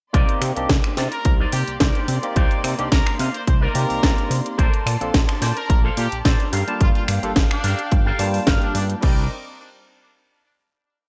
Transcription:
0.13 C2 A#3 C4 D#4 G4 A#4 C5 D5 C6, kick, closed hi-hat
0.29 closed hi-hat
0.41 C3, finger snap, open hi-hat
0.56 C2 A#3 C4 D4 D#4 G4, closed hi-hat
0.69 C2, kick, snare, closed hi-hat
0.84 finger snap, muted clean electric guitar stroke
0.97 C3 D#4 A#4 C5 D5, snare, open hi-hat
1.12 A#4, closed hi-hat
1.25 C2, muted clean electric guitar stroke, kick, closed hi-hat
1.40 D#4 A#4 C5 D5
1.52 C3 G4, open hi-hat
1.68 C2, closed hi-hat
1.80 C2 D#4 A#4 C5 D5, kick, snare, closed hi-hat
1.95 closed hi-hat
2.08 C3, open hi-hat
2.23 A#3 C4 D#4 G4 D5, closed hi-hat
2.36 C2 D#4 A#4 C5 D5, kick, closed hi-hat
2.51 closed hi-hat
2.64 C3, finger snap, open hi-hat
2.78 C2 A#3 C4 D4 D#4 G4, closed hi-hat
2.92 C2 A#4, kick, snare, closed hi-hat
3.06 finger snap, muted clean electric guitar stroke
3.19 C3 D#4 A#4 C5 F5, open hi-hat
3.34 C5, closed hi-hat
3.47 C2 C5, muted clean electric guitar stroke, kick, closed hi-hat
3.61 D#4 A#4 C5 D5
3.74 C3 A#3 C4 D#4 G4 D5, open hi-hat
3.90 C2, open hi-hat
4.02 C2 D#4 A#4 C5 D5, kick, snare, closed hi-hat
4.18 closed hi-hat
4.30 C3, open hi-hat
4.46 closed hi-hat
4.58 A#1 A4 A#4 C5 D5 A5, kick, closed hi-hat
4.74 closed hi-hat
4.86 A#2, finger snap, open hi-hat
5.01 A#1 A#3 C4 D4 F4 A4, closed hi-hat
5.14 A#1, kick, snare, closed hi-hat
5.28 finger snap, muted clean electric guitar stroke
5.41 A#2 A4 A#4 C5 D5, snare, open hi-hat
5.57 A#4, closed hi-hat
5.69 A#1, muted clean electric guitar stroke, kick, closed hi-hat
5.84 A4 A#4 C5 F5
5.97 A#2 G4, open hi-hat
6.12 A#1, closed hi-hat
6.25 A#1 A4 A#4 C5 D5, kick, snare, closed hi-hat
6.40 closed hi-hat
6.52 G2 G4 A4 A#4 F5 G5, open hi-hat
6.67 G3 A#3 D4 F4 A5, closed hi-hat
6.80 G1 F4, kick, closed hi-hat
6.95 F4, closed hi-hat
7.08 G2, finger snap, open hi-hat
7.23 G1 G3 A#3 D4 F4 A4, closed hi-hat
7.36 G1, kick, snare, closed hi-hat
7.50 D4, finger snap, muted clean electric guitar stroke
7.64 G2 G4 A4 A#4 F5, open hi-hat
7.79 closed hi-hat
7.91 G1, muted clean electric guitar stroke, kick, closed hi-hat
8.06 G4 A4 A#4 F5
8.18 G2 G3 A#3 D4 F4 A5, open hi-hat
8.34 open hi-hat
8.47 G1 G4 A4 A#4 F5, kick, snare, closed hi-hat
8.62 D4, closed hi-hat
8.75 G2 D4, open hi-hat
8.90 closed hi-hat
9.01 C2 G3 C4 D4 D#4 A#4 D5 D#5 D6, kick, crash

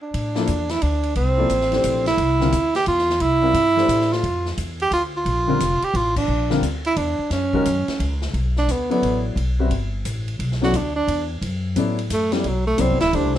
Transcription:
0.02 D4
0.14 A2, ride
0.35 F3 A#3 E4 A4 D5, snare
0.47 E2, hi-hat pedal, ride
0.69 E4, snare, ride
0.82 D2 D4, ride
1.03 ride
1.15 C2 C4, ride
1.37 F3 A#3 E4 A4 D5
1.50 A1, hi-hat pedal, ride
1.61 snare
1.72 E3 A3 D4 G4 C5, snare, ride
1.84 A#1, hi-hat pedal, ride
2.06 E4, snare, ride
2.17 C2, ride
2.40 D3 G3 C4 F4 A#4, snare
2.52 D2, hi-hat pedal, ride
2.75 G4, snare, ride
2.86 E2 F4, ride
2.98 snare
3.10 snare
3.20 C2 E4, ride
3.42 G3 C4 F4 A#4 E5
3.54 G2, hi-hat pedal, ride
3.76 E3 A3 D4 G4 C5, snare
3.88 A2, hi-hat pedal, ride
4.01 snare
4.13 F4, snare
4.23 F2, ride
4.46 snare
4.57 E2, hi-hat pedal, ride
4.80 G4, ride
4.91 D2 F4, ride
5.17 F4
5.25 A#1, ride
5.47 D3 G3 C4 F4 A#4
5.60 F1, hi-hat pedal, ride
5.82 G4, muted upright bass stroke, ride
5.94 A1 F4, ride
6.16 D4, kick, crash
6.28 A#1
6.50 D3 G3 C4 F4 A#4, snare
6.62 D2, hi-hat pedal, ride
6.85 E4, ride
6.96 E2 D4, ride
7.19 muted upright bass stroke
7.30 F#2 C#4, snare, ride
7.53 D#3 G#3 C#4 F#4 A#4, kick
7.65 F#2, hi-hat pedal, ride
7.88 muted upright bass stroke, snare, ride
8.00 C#2, ride
8.22 snare
8.34 B1, ride
8.56 D4, snare
8.68 D2 B3, hi-hat pedal, ride
8.90 F#3 B3 E4 A4 D5, ride
9.02 A1, ride
9.36 B1, ride
9.59 G3 C4 F#4 B4 E5
9.70 G1, ride
10.05 A1, hi-hat pedal, ride
10.28 ride
10.39 B1, ride
10.52 snare
10.62 F#3 B3 E4 F#4 A4 D5, snare
10.74 D2 D4, hi-hat pedal, ride
10.96 D4
11.07 E2, ride
11.41 F#2, ride
11.76 A2 F#3 B3 E4 A4 D5, hi-hat pedal, ride
11.99 ride
12.10 F#2 A3, hi-hat pedal, ride
12.32 F#3 G3 B3 E4 A4 D5, snare, ride
12.44 B1 F#3, ride
12.67 A3
12.78 C2 F#3 B3 C4 E4 A4 D5, hi-hat pedal, ride
12.91 G1
13.00 D1 E4, snare, ride
13.13 D2 E3 A3 D4 G4 C5, ride
13.24 C2
13.35 G1

